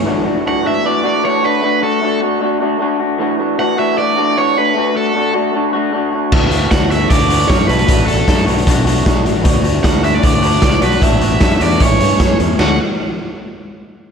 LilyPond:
<<
  \new Staff \with { instrumentName = "Overdriven electric guitar" } { \time 4/4 \key d \major \tempo 4 = 153 r4 fis''8 e''8 d''4 cis''8 b'8~ | b'8 a'4 r2 r8 | r4 fis''8 e''8 d''4 cis''8 b'8~ | b'8 a'4 r2 r8 |
r4 fis''8 e''8 d''4 cis''8 b'8~ | b'8 a'4 r2 r8 | r4 fis''8 e''16 d''16 d''4. b'8 | e''4. d''8 cis''4. r8 |
fis''8 r2. r8 | }
  \new Staff \with { instrumentName = "Clean electric guitar" } { \time 4/4 \key d \major <e a d' fis'>8 <a d' fis'>8 <e a d' fis'>8 <e a d' fis'>8 <e a d' fis'>8 <e a d' fis'>8 <e a d' fis'>8 <a d' fis'>8 | <a d' fis'>8 <d' fis'>8 <a d' fis'>8 <a d' fis'>8 <a d' fis'>8 <a d' fis'>8 <a d' fis'>8 <d' fis'>8 | <e a d' fis'>8 <a d' fis'>8 <e a d' fis'>8 <e a d' fis'>8 <e a d' fis'>8 <e a d' fis'>8 <e a d' fis'>8 <a d' fis'>8 | <a d' fis'>8 <d' fis'>8 <a d' fis'>8 <a d' fis'>8 <a d' fis'>8 <a d' fis'>8 <a d' fis'>8 <d' fis'>8 |
<e a d' fis'>8 <a d' fis'>8 <e a d' fis'>8 <e a d' fis'>8 <e a d' fis'>8 <e a d' fis'>8 <e a d' fis'>8 <a d' fis'>8 | <a d' fis'>8 <d' fis'>8 <a d' fis'>8 <a d' fis'>8 <a d' fis'>8 <a d' fis'>8 <a d' fis'>8 <d' fis'>8 | <e a d' fis'>8 <a d' fis'>8 <e a d' fis'>8 <e a d' fis'>8 <e a d' fis'>8 <e a d' fis'>8 <e a d' fis'>8 <a d' fis'>8 | <a d' fis'>8 <d' fis'>8 <a d' fis'>8 <a d' fis'>8 <e a cis'>8 <e a cis'>8 <e a cis'>8 <a cis'>8 |
<e a d' fis'>8 r2. r8 | }
  \new Staff \with { instrumentName = "Fingered electric bass" } { \clef bass \time 4/4 \key d \major r1 | r1 | r1 | r1 |
d,4 d,4 d,4 fis,8 b,,8 | a,,4 fis,8 b,,8 b,,4 b,,8 a,,8 | d,4 d,4 d,4 cis,8 b,,8 | a,,4 fis,8 e,8 a,,8 g,8 fis,8 e,8 |
d,8 r2. r8 | }
  \new DrumStaff \with { instrumentName = "Drums" } \drummode { \time 4/4 r4 r4 r4 r4 | r4 r4 r4 r4 | r4 r4 r4 r4 | r4 r4 r4 r4 |
<cymc bd>8 hh8 <hh bd sn>8 hh8 <hh bd>16 hh16 hh16 hh16 <hh bd sn>16 hh16 hh16 hh16 | <hh bd>8 hh8 <hh bd sn>8 hh16 hh16 <hh bd>8 hh16 hh16 <hh bd sn>8 hh8 | <hh bd>8 hh8 <hh bd sn>8 hh8 <hh bd>8 hh16 hh16 <hh bd sn>16 hh16 hh16 hh16 | <hh bd>8 hh8 <hh bd sn>16 hh16 hh16 hh16 <hh bd>8 hh16 hh16 <hh bd sn>8 hh8 |
<cymc sn>4 r4 r4 r4 | }
>>